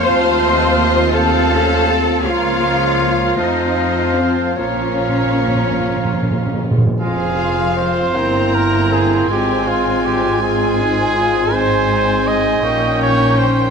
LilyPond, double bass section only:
\new Staff \with { instrumentName = "Double bass section" } { \clef bass \time 6/8 \key bes \minor \tempo 4. = 53 ees,2. | des,4. f,4. | bes,,2~ bes,,8 r8 | \key f \minor f,,4. g,,4. |
aes,,2.~ | aes,,4. bes,,4. | }